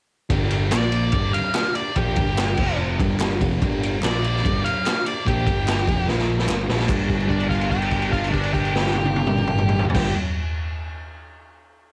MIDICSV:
0, 0, Header, 1, 6, 480
1, 0, Start_track
1, 0, Key_signature, -2, "minor"
1, 0, Tempo, 412088
1, 365, Time_signature, 4, 2, 24, 8
1, 13884, End_track
2, 0, Start_track
2, 0, Title_t, "Lead electric guitar"
2, 0, Program_c, 0, 29
2, 846, Note_on_c, 0, 74, 113
2, 1550, Note_off_c, 0, 74, 0
2, 1552, Note_on_c, 0, 77, 83
2, 2030, Note_off_c, 0, 77, 0
2, 2040, Note_on_c, 0, 74, 90
2, 2281, Note_off_c, 0, 74, 0
2, 2282, Note_on_c, 0, 67, 98
2, 3222, Note_off_c, 0, 67, 0
2, 4707, Note_on_c, 0, 74, 109
2, 5396, Note_off_c, 0, 74, 0
2, 5409, Note_on_c, 0, 77, 89
2, 5873, Note_off_c, 0, 77, 0
2, 5900, Note_on_c, 0, 74, 98
2, 6126, Note_off_c, 0, 74, 0
2, 6144, Note_on_c, 0, 67, 107
2, 7060, Note_off_c, 0, 67, 0
2, 8490, Note_on_c, 0, 62, 103
2, 8723, Note_off_c, 0, 62, 0
2, 8727, Note_on_c, 0, 65, 80
2, 8969, Note_on_c, 0, 67, 87
2, 8970, Note_off_c, 0, 65, 0
2, 9442, Note_off_c, 0, 67, 0
2, 9453, Note_on_c, 0, 65, 84
2, 9671, Note_off_c, 0, 65, 0
2, 9676, Note_on_c, 0, 62, 96
2, 9923, Note_off_c, 0, 62, 0
2, 9931, Note_on_c, 0, 67, 96
2, 11468, Note_off_c, 0, 67, 0
2, 11586, Note_on_c, 0, 67, 104
2, 11793, Note_off_c, 0, 67, 0
2, 13884, End_track
3, 0, Start_track
3, 0, Title_t, "Transistor combo organ"
3, 0, Program_c, 1, 18
3, 346, Note_on_c, 1, 62, 112
3, 364, Note_on_c, 1, 67, 112
3, 378, Note_on_c, 1, 70, 125
3, 768, Note_off_c, 1, 62, 0
3, 777, Note_off_c, 1, 67, 0
3, 784, Note_off_c, 1, 70, 0
3, 847, Note_on_c, 1, 58, 75
3, 855, Note_on_c, 1, 65, 68
3, 873, Note_on_c, 1, 70, 83
3, 1054, Note_off_c, 1, 58, 0
3, 1058, Note_off_c, 1, 65, 0
3, 1067, Note_off_c, 1, 70, 0
3, 1071, Note_on_c, 1, 58, 66
3, 1083, Note_on_c, 1, 70, 76
3, 1092, Note_on_c, 1, 65, 64
3, 1287, Note_off_c, 1, 58, 0
3, 1293, Note_off_c, 1, 70, 0
3, 1297, Note_off_c, 1, 65, 0
3, 1329, Note_on_c, 1, 62, 75
3, 1342, Note_on_c, 1, 67, 68
3, 1349, Note_on_c, 1, 70, 74
3, 1742, Note_off_c, 1, 62, 0
3, 1749, Note_off_c, 1, 67, 0
3, 1753, Note_off_c, 1, 70, 0
3, 1820, Note_on_c, 1, 62, 70
3, 1832, Note_on_c, 1, 67, 71
3, 1842, Note_on_c, 1, 70, 78
3, 2229, Note_off_c, 1, 62, 0
3, 2235, Note_off_c, 1, 67, 0
3, 2240, Note_off_c, 1, 70, 0
3, 2292, Note_on_c, 1, 62, 95
3, 2298, Note_on_c, 1, 67, 92
3, 2307, Note_on_c, 1, 70, 120
3, 2705, Note_off_c, 1, 62, 0
3, 2708, Note_off_c, 1, 67, 0
3, 2713, Note_off_c, 1, 70, 0
3, 2787, Note_on_c, 1, 62, 71
3, 2795, Note_on_c, 1, 70, 83
3, 2798, Note_on_c, 1, 67, 70
3, 2988, Note_off_c, 1, 62, 0
3, 2992, Note_off_c, 1, 70, 0
3, 2993, Note_off_c, 1, 67, 0
3, 3016, Note_on_c, 1, 60, 90
3, 3035, Note_on_c, 1, 65, 87
3, 3044, Note_on_c, 1, 72, 108
3, 3427, Note_off_c, 1, 60, 0
3, 3437, Note_off_c, 1, 65, 0
3, 3441, Note_off_c, 1, 72, 0
3, 3497, Note_on_c, 1, 62, 98
3, 3507, Note_on_c, 1, 67, 91
3, 3518, Note_on_c, 1, 70, 110
3, 4112, Note_off_c, 1, 62, 0
3, 4116, Note_off_c, 1, 67, 0
3, 4122, Note_off_c, 1, 70, 0
3, 4205, Note_on_c, 1, 62, 119
3, 4226, Note_on_c, 1, 67, 107
3, 4232, Note_on_c, 1, 70, 127
3, 4619, Note_off_c, 1, 62, 0
3, 4630, Note_off_c, 1, 67, 0
3, 4633, Note_off_c, 1, 70, 0
3, 4706, Note_on_c, 1, 58, 82
3, 4711, Note_on_c, 1, 65, 72
3, 4727, Note_on_c, 1, 70, 91
3, 4905, Note_off_c, 1, 58, 0
3, 4907, Note_off_c, 1, 65, 0
3, 4915, Note_off_c, 1, 70, 0
3, 4953, Note_on_c, 1, 58, 69
3, 4963, Note_on_c, 1, 65, 64
3, 4972, Note_on_c, 1, 67, 70
3, 5148, Note_off_c, 1, 58, 0
3, 5152, Note_off_c, 1, 65, 0
3, 5154, Note_on_c, 1, 62, 74
3, 5157, Note_off_c, 1, 67, 0
3, 5174, Note_on_c, 1, 67, 63
3, 5188, Note_on_c, 1, 70, 82
3, 5571, Note_off_c, 1, 62, 0
3, 5581, Note_off_c, 1, 67, 0
3, 5588, Note_off_c, 1, 70, 0
3, 5610, Note_on_c, 1, 62, 79
3, 5628, Note_on_c, 1, 67, 67
3, 5646, Note_on_c, 1, 70, 86
3, 6037, Note_off_c, 1, 62, 0
3, 6046, Note_off_c, 1, 67, 0
3, 6055, Note_off_c, 1, 70, 0
3, 6117, Note_on_c, 1, 62, 95
3, 6138, Note_on_c, 1, 67, 96
3, 6143, Note_on_c, 1, 70, 105
3, 6529, Note_off_c, 1, 62, 0
3, 6540, Note_off_c, 1, 67, 0
3, 6542, Note_off_c, 1, 70, 0
3, 6594, Note_on_c, 1, 62, 83
3, 6607, Note_on_c, 1, 67, 75
3, 6616, Note_on_c, 1, 70, 86
3, 6797, Note_off_c, 1, 62, 0
3, 6809, Note_off_c, 1, 67, 0
3, 6811, Note_on_c, 1, 62, 86
3, 6813, Note_off_c, 1, 70, 0
3, 6831, Note_on_c, 1, 67, 77
3, 6836, Note_on_c, 1, 70, 86
3, 7030, Note_off_c, 1, 62, 0
3, 7040, Note_off_c, 1, 67, 0
3, 7042, Note_off_c, 1, 70, 0
3, 7042, Note_on_c, 1, 58, 78
3, 7057, Note_on_c, 1, 70, 97
3, 7060, Note_on_c, 1, 65, 83
3, 7468, Note_off_c, 1, 58, 0
3, 7476, Note_off_c, 1, 70, 0
3, 7477, Note_off_c, 1, 65, 0
3, 7528, Note_on_c, 1, 62, 89
3, 7534, Note_on_c, 1, 67, 88
3, 7559, Note_on_c, 1, 70, 103
3, 7950, Note_off_c, 1, 62, 0
3, 7952, Note_off_c, 1, 67, 0
3, 7965, Note_off_c, 1, 70, 0
3, 8015, Note_on_c, 1, 62, 88
3, 8016, Note_on_c, 1, 70, 103
3, 8026, Note_on_c, 1, 67, 84
3, 11465, Note_off_c, 1, 62, 0
3, 11466, Note_off_c, 1, 70, 0
3, 11471, Note_off_c, 1, 67, 0
3, 11588, Note_on_c, 1, 67, 70
3, 11597, Note_on_c, 1, 70, 93
3, 11601, Note_on_c, 1, 62, 77
3, 11785, Note_off_c, 1, 67, 0
3, 11790, Note_off_c, 1, 70, 0
3, 11793, Note_off_c, 1, 62, 0
3, 13884, End_track
4, 0, Start_track
4, 0, Title_t, "Distorted electric guitar"
4, 0, Program_c, 2, 30
4, 347, Note_on_c, 2, 43, 99
4, 356, Note_on_c, 2, 50, 104
4, 373, Note_on_c, 2, 55, 102
4, 825, Note_off_c, 2, 50, 0
4, 830, Note_on_c, 2, 46, 101
4, 832, Note_off_c, 2, 43, 0
4, 836, Note_off_c, 2, 55, 0
4, 841, Note_on_c, 2, 53, 86
4, 851, Note_on_c, 2, 58, 93
4, 1307, Note_on_c, 2, 43, 99
4, 1315, Note_off_c, 2, 46, 0
4, 1321, Note_off_c, 2, 53, 0
4, 1321, Note_on_c, 2, 50, 98
4, 1326, Note_off_c, 2, 58, 0
4, 1331, Note_on_c, 2, 55, 94
4, 1554, Note_off_c, 2, 43, 0
4, 1560, Note_off_c, 2, 50, 0
4, 1566, Note_off_c, 2, 55, 0
4, 2279, Note_on_c, 2, 46, 94
4, 2289, Note_on_c, 2, 53, 105
4, 2301, Note_on_c, 2, 58, 106
4, 2521, Note_off_c, 2, 46, 0
4, 2525, Note_on_c, 2, 43, 86
4, 2526, Note_off_c, 2, 53, 0
4, 2533, Note_off_c, 2, 58, 0
4, 2537, Note_on_c, 2, 50, 89
4, 2548, Note_on_c, 2, 55, 93
4, 2989, Note_off_c, 2, 43, 0
4, 2994, Note_on_c, 2, 41, 90
4, 3004, Note_off_c, 2, 50, 0
4, 3009, Note_on_c, 2, 48, 114
4, 3017, Note_off_c, 2, 55, 0
4, 3021, Note_on_c, 2, 53, 112
4, 3478, Note_off_c, 2, 41, 0
4, 3482, Note_on_c, 2, 43, 102
4, 3487, Note_off_c, 2, 48, 0
4, 3493, Note_off_c, 2, 53, 0
4, 3496, Note_on_c, 2, 50, 107
4, 3499, Note_on_c, 2, 55, 107
4, 3959, Note_off_c, 2, 43, 0
4, 3963, Note_on_c, 2, 41, 87
4, 3969, Note_off_c, 2, 50, 0
4, 3971, Note_off_c, 2, 55, 0
4, 3977, Note_on_c, 2, 48, 94
4, 3989, Note_on_c, 2, 53, 92
4, 4194, Note_off_c, 2, 41, 0
4, 4199, Note_on_c, 2, 43, 107
4, 4205, Note_off_c, 2, 48, 0
4, 4209, Note_on_c, 2, 50, 114
4, 4215, Note_off_c, 2, 53, 0
4, 4219, Note_on_c, 2, 55, 108
4, 4670, Note_off_c, 2, 50, 0
4, 4675, Note_on_c, 2, 46, 99
4, 4679, Note_off_c, 2, 43, 0
4, 4681, Note_off_c, 2, 55, 0
4, 4685, Note_on_c, 2, 53, 105
4, 4699, Note_on_c, 2, 58, 110
4, 5150, Note_on_c, 2, 43, 92
4, 5156, Note_off_c, 2, 46, 0
4, 5161, Note_off_c, 2, 53, 0
4, 5168, Note_off_c, 2, 58, 0
4, 5172, Note_on_c, 2, 50, 103
4, 5174, Note_on_c, 2, 55, 106
4, 5393, Note_off_c, 2, 43, 0
4, 5404, Note_off_c, 2, 50, 0
4, 5405, Note_off_c, 2, 55, 0
4, 6120, Note_on_c, 2, 46, 105
4, 6133, Note_on_c, 2, 53, 98
4, 6146, Note_on_c, 2, 58, 109
4, 6355, Note_off_c, 2, 46, 0
4, 6360, Note_on_c, 2, 43, 96
4, 6362, Note_off_c, 2, 53, 0
4, 6368, Note_off_c, 2, 58, 0
4, 6372, Note_on_c, 2, 50, 98
4, 6382, Note_on_c, 2, 55, 96
4, 6832, Note_off_c, 2, 43, 0
4, 6837, Note_on_c, 2, 41, 98
4, 6838, Note_off_c, 2, 50, 0
4, 6843, Note_off_c, 2, 55, 0
4, 6847, Note_on_c, 2, 48, 95
4, 6859, Note_on_c, 2, 53, 110
4, 7056, Note_off_c, 2, 48, 0
4, 7061, Note_off_c, 2, 53, 0
4, 7061, Note_on_c, 2, 46, 93
4, 7071, Note_off_c, 2, 41, 0
4, 7075, Note_on_c, 2, 53, 99
4, 7088, Note_on_c, 2, 58, 101
4, 7537, Note_on_c, 2, 43, 87
4, 7540, Note_off_c, 2, 46, 0
4, 7547, Note_off_c, 2, 53, 0
4, 7554, Note_off_c, 2, 58, 0
4, 7554, Note_on_c, 2, 50, 99
4, 7563, Note_on_c, 2, 55, 101
4, 7775, Note_off_c, 2, 50, 0
4, 7778, Note_off_c, 2, 43, 0
4, 7780, Note_on_c, 2, 46, 85
4, 7789, Note_off_c, 2, 55, 0
4, 7794, Note_on_c, 2, 53, 91
4, 7802, Note_on_c, 2, 58, 103
4, 8007, Note_on_c, 2, 43, 91
4, 8019, Note_off_c, 2, 46, 0
4, 8026, Note_off_c, 2, 53, 0
4, 8029, Note_on_c, 2, 50, 107
4, 8030, Note_off_c, 2, 58, 0
4, 8053, Note_on_c, 2, 55, 102
4, 11567, Note_off_c, 2, 43, 0
4, 11571, Note_on_c, 2, 43, 94
4, 11589, Note_off_c, 2, 50, 0
4, 11594, Note_on_c, 2, 50, 106
4, 11608, Note_off_c, 2, 55, 0
4, 11612, Note_on_c, 2, 55, 99
4, 11792, Note_off_c, 2, 43, 0
4, 11803, Note_off_c, 2, 50, 0
4, 11813, Note_off_c, 2, 55, 0
4, 13884, End_track
5, 0, Start_track
5, 0, Title_t, "Picked electric bass"
5, 0, Program_c, 3, 34
5, 356, Note_on_c, 3, 31, 104
5, 810, Note_off_c, 3, 31, 0
5, 836, Note_on_c, 3, 34, 97
5, 1291, Note_off_c, 3, 34, 0
5, 1318, Note_on_c, 3, 31, 92
5, 1549, Note_off_c, 3, 31, 0
5, 2293, Note_on_c, 3, 34, 97
5, 2519, Note_off_c, 3, 34, 0
5, 2524, Note_on_c, 3, 31, 94
5, 2977, Note_off_c, 3, 31, 0
5, 2998, Note_on_c, 3, 29, 96
5, 3454, Note_off_c, 3, 29, 0
5, 3493, Note_on_c, 3, 31, 87
5, 3941, Note_off_c, 3, 31, 0
5, 3968, Note_on_c, 3, 29, 103
5, 4195, Note_off_c, 3, 29, 0
5, 4214, Note_on_c, 3, 31, 104
5, 4660, Note_off_c, 3, 31, 0
5, 4696, Note_on_c, 3, 34, 95
5, 5140, Note_off_c, 3, 34, 0
5, 5186, Note_on_c, 3, 31, 97
5, 5402, Note_off_c, 3, 31, 0
5, 6127, Note_on_c, 3, 34, 99
5, 6349, Note_off_c, 3, 34, 0
5, 6368, Note_on_c, 3, 31, 99
5, 6810, Note_off_c, 3, 31, 0
5, 6845, Note_on_c, 3, 29, 93
5, 7065, Note_off_c, 3, 29, 0
5, 7083, Note_on_c, 3, 34, 97
5, 7525, Note_off_c, 3, 34, 0
5, 7558, Note_on_c, 3, 31, 93
5, 7779, Note_off_c, 3, 31, 0
5, 7805, Note_on_c, 3, 34, 89
5, 8014, Note_off_c, 3, 34, 0
5, 8021, Note_on_c, 3, 31, 105
5, 11468, Note_off_c, 3, 31, 0
5, 11587, Note_on_c, 3, 31, 99
5, 11785, Note_off_c, 3, 31, 0
5, 13884, End_track
6, 0, Start_track
6, 0, Title_t, "Drums"
6, 352, Note_on_c, 9, 36, 102
6, 352, Note_on_c, 9, 51, 102
6, 468, Note_off_c, 9, 51, 0
6, 469, Note_off_c, 9, 36, 0
6, 589, Note_on_c, 9, 51, 79
6, 706, Note_off_c, 9, 51, 0
6, 826, Note_on_c, 9, 51, 104
6, 834, Note_on_c, 9, 38, 108
6, 848, Note_on_c, 9, 39, 100
6, 942, Note_off_c, 9, 51, 0
6, 951, Note_off_c, 9, 38, 0
6, 964, Note_off_c, 9, 39, 0
6, 1071, Note_on_c, 9, 51, 81
6, 1188, Note_off_c, 9, 51, 0
6, 1303, Note_on_c, 9, 51, 99
6, 1316, Note_on_c, 9, 36, 103
6, 1419, Note_off_c, 9, 51, 0
6, 1432, Note_off_c, 9, 36, 0
6, 1561, Note_on_c, 9, 51, 77
6, 1677, Note_off_c, 9, 51, 0
6, 1792, Note_on_c, 9, 51, 91
6, 1800, Note_on_c, 9, 38, 112
6, 1804, Note_on_c, 9, 39, 98
6, 1908, Note_off_c, 9, 51, 0
6, 1916, Note_off_c, 9, 38, 0
6, 1921, Note_off_c, 9, 39, 0
6, 2038, Note_on_c, 9, 51, 80
6, 2155, Note_off_c, 9, 51, 0
6, 2277, Note_on_c, 9, 51, 98
6, 2285, Note_on_c, 9, 36, 107
6, 2394, Note_off_c, 9, 51, 0
6, 2401, Note_off_c, 9, 36, 0
6, 2515, Note_on_c, 9, 51, 73
6, 2524, Note_on_c, 9, 36, 116
6, 2632, Note_off_c, 9, 51, 0
6, 2640, Note_off_c, 9, 36, 0
6, 2762, Note_on_c, 9, 51, 95
6, 2771, Note_on_c, 9, 38, 109
6, 2776, Note_on_c, 9, 39, 92
6, 2879, Note_off_c, 9, 51, 0
6, 2887, Note_off_c, 9, 38, 0
6, 2892, Note_off_c, 9, 39, 0
6, 2996, Note_on_c, 9, 49, 102
6, 3004, Note_on_c, 9, 36, 105
6, 3113, Note_off_c, 9, 49, 0
6, 3120, Note_off_c, 9, 36, 0
6, 3488, Note_on_c, 9, 36, 118
6, 3491, Note_on_c, 9, 51, 74
6, 3604, Note_off_c, 9, 36, 0
6, 3608, Note_off_c, 9, 51, 0
6, 3725, Note_on_c, 9, 39, 96
6, 3726, Note_on_c, 9, 51, 83
6, 3734, Note_on_c, 9, 38, 105
6, 3841, Note_off_c, 9, 39, 0
6, 3842, Note_off_c, 9, 51, 0
6, 3851, Note_off_c, 9, 38, 0
6, 3970, Note_on_c, 9, 36, 106
6, 3972, Note_on_c, 9, 51, 80
6, 4087, Note_off_c, 9, 36, 0
6, 4089, Note_off_c, 9, 51, 0
6, 4214, Note_on_c, 9, 36, 106
6, 4214, Note_on_c, 9, 51, 99
6, 4330, Note_off_c, 9, 36, 0
6, 4330, Note_off_c, 9, 51, 0
6, 4464, Note_on_c, 9, 51, 78
6, 4580, Note_off_c, 9, 51, 0
6, 4689, Note_on_c, 9, 39, 95
6, 4707, Note_on_c, 9, 51, 103
6, 4715, Note_on_c, 9, 38, 112
6, 4806, Note_off_c, 9, 39, 0
6, 4823, Note_off_c, 9, 51, 0
6, 4831, Note_off_c, 9, 38, 0
6, 4941, Note_on_c, 9, 51, 78
6, 5057, Note_off_c, 9, 51, 0
6, 5082, Note_on_c, 9, 38, 32
6, 5181, Note_on_c, 9, 36, 108
6, 5186, Note_on_c, 9, 51, 98
6, 5198, Note_off_c, 9, 38, 0
6, 5298, Note_off_c, 9, 36, 0
6, 5302, Note_off_c, 9, 51, 0
6, 5421, Note_on_c, 9, 51, 79
6, 5538, Note_off_c, 9, 51, 0
6, 5658, Note_on_c, 9, 51, 92
6, 5666, Note_on_c, 9, 38, 112
6, 5666, Note_on_c, 9, 39, 92
6, 5774, Note_off_c, 9, 51, 0
6, 5782, Note_off_c, 9, 38, 0
6, 5782, Note_off_c, 9, 39, 0
6, 5896, Note_on_c, 9, 51, 84
6, 6012, Note_off_c, 9, 51, 0
6, 6132, Note_on_c, 9, 36, 102
6, 6144, Note_on_c, 9, 51, 104
6, 6249, Note_off_c, 9, 36, 0
6, 6261, Note_off_c, 9, 51, 0
6, 6367, Note_on_c, 9, 36, 110
6, 6372, Note_on_c, 9, 51, 80
6, 6484, Note_off_c, 9, 36, 0
6, 6488, Note_off_c, 9, 51, 0
6, 6610, Note_on_c, 9, 51, 109
6, 6614, Note_on_c, 9, 39, 94
6, 6618, Note_on_c, 9, 38, 112
6, 6727, Note_off_c, 9, 51, 0
6, 6731, Note_off_c, 9, 39, 0
6, 6735, Note_off_c, 9, 38, 0
6, 6842, Note_on_c, 9, 36, 112
6, 6852, Note_on_c, 9, 51, 77
6, 6959, Note_off_c, 9, 36, 0
6, 6969, Note_off_c, 9, 51, 0
6, 7084, Note_on_c, 9, 38, 64
6, 7200, Note_off_c, 9, 38, 0
6, 7204, Note_on_c, 9, 38, 64
6, 7320, Note_off_c, 9, 38, 0
6, 7440, Note_on_c, 9, 38, 79
6, 7556, Note_off_c, 9, 38, 0
6, 7557, Note_on_c, 9, 38, 83
6, 7557, Note_on_c, 9, 39, 105
6, 7674, Note_off_c, 9, 38, 0
6, 7674, Note_off_c, 9, 39, 0
6, 7796, Note_on_c, 9, 38, 98
6, 7908, Note_off_c, 9, 38, 0
6, 7908, Note_on_c, 9, 38, 98
6, 8014, Note_on_c, 9, 57, 87
6, 8023, Note_on_c, 9, 36, 104
6, 8024, Note_off_c, 9, 38, 0
6, 8027, Note_on_c, 9, 39, 85
6, 8130, Note_off_c, 9, 57, 0
6, 8140, Note_off_c, 9, 36, 0
6, 8144, Note_off_c, 9, 39, 0
6, 8266, Note_on_c, 9, 36, 68
6, 8269, Note_on_c, 9, 57, 50
6, 8383, Note_off_c, 9, 36, 0
6, 8385, Note_off_c, 9, 57, 0
6, 8389, Note_on_c, 9, 49, 41
6, 8505, Note_off_c, 9, 49, 0
6, 8508, Note_on_c, 9, 36, 61
6, 8515, Note_on_c, 9, 57, 47
6, 8621, Note_on_c, 9, 49, 48
6, 8625, Note_off_c, 9, 36, 0
6, 8631, Note_off_c, 9, 57, 0
6, 8738, Note_off_c, 9, 49, 0
6, 8746, Note_on_c, 9, 36, 61
6, 8754, Note_on_c, 9, 57, 50
6, 8863, Note_off_c, 9, 36, 0
6, 8866, Note_on_c, 9, 49, 53
6, 8870, Note_off_c, 9, 57, 0
6, 8983, Note_off_c, 9, 49, 0
6, 8985, Note_on_c, 9, 36, 64
6, 8990, Note_on_c, 9, 57, 49
6, 9102, Note_off_c, 9, 36, 0
6, 9107, Note_off_c, 9, 57, 0
6, 9107, Note_on_c, 9, 49, 57
6, 9214, Note_on_c, 9, 57, 56
6, 9222, Note_on_c, 9, 36, 73
6, 9224, Note_off_c, 9, 49, 0
6, 9331, Note_off_c, 9, 57, 0
6, 9339, Note_off_c, 9, 36, 0
6, 9341, Note_on_c, 9, 49, 52
6, 9457, Note_off_c, 9, 49, 0
6, 9468, Note_on_c, 9, 36, 66
6, 9471, Note_on_c, 9, 57, 48
6, 9584, Note_off_c, 9, 36, 0
6, 9587, Note_off_c, 9, 57, 0
6, 9600, Note_on_c, 9, 49, 56
6, 9711, Note_on_c, 9, 36, 70
6, 9716, Note_off_c, 9, 49, 0
6, 9719, Note_on_c, 9, 57, 56
6, 9823, Note_on_c, 9, 49, 59
6, 9828, Note_off_c, 9, 36, 0
6, 9835, Note_off_c, 9, 57, 0
6, 9940, Note_off_c, 9, 49, 0
6, 9950, Note_on_c, 9, 36, 69
6, 9953, Note_on_c, 9, 57, 56
6, 10067, Note_off_c, 9, 36, 0
6, 10070, Note_off_c, 9, 57, 0
6, 10075, Note_on_c, 9, 49, 56
6, 10192, Note_off_c, 9, 49, 0
6, 10199, Note_on_c, 9, 38, 97
6, 10315, Note_off_c, 9, 38, 0
6, 10329, Note_on_c, 9, 38, 94
6, 10426, Note_on_c, 9, 48, 100
6, 10446, Note_off_c, 9, 38, 0
6, 10542, Note_off_c, 9, 48, 0
6, 10545, Note_on_c, 9, 48, 107
6, 10662, Note_off_c, 9, 48, 0
6, 10671, Note_on_c, 9, 48, 101
6, 10787, Note_off_c, 9, 48, 0
6, 10795, Note_on_c, 9, 47, 106
6, 10912, Note_off_c, 9, 47, 0
6, 10930, Note_on_c, 9, 47, 96
6, 11037, Note_on_c, 9, 45, 109
6, 11046, Note_off_c, 9, 47, 0
6, 11153, Note_off_c, 9, 45, 0
6, 11164, Note_on_c, 9, 45, 110
6, 11281, Note_off_c, 9, 45, 0
6, 11283, Note_on_c, 9, 45, 111
6, 11400, Note_off_c, 9, 45, 0
6, 11404, Note_on_c, 9, 43, 96
6, 11520, Note_off_c, 9, 43, 0
6, 11528, Note_on_c, 9, 43, 113
6, 11586, Note_on_c, 9, 57, 106
6, 11587, Note_on_c, 9, 36, 116
6, 11595, Note_on_c, 9, 38, 110
6, 11645, Note_off_c, 9, 43, 0
6, 11703, Note_off_c, 9, 57, 0
6, 11704, Note_off_c, 9, 36, 0
6, 11711, Note_off_c, 9, 38, 0
6, 13884, End_track
0, 0, End_of_file